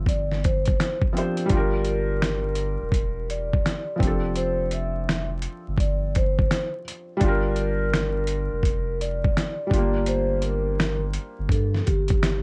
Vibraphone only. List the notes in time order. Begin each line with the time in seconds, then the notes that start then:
0.09 D5
0.44 C5
1.88 A#4
3.30 D5
4.37 C5
4.73 E5
5.80 D5
6.17 C5
7.59 A#4
9.01 D5
10.08 C5
10.44 A#4
11.51 A4
11.86 G4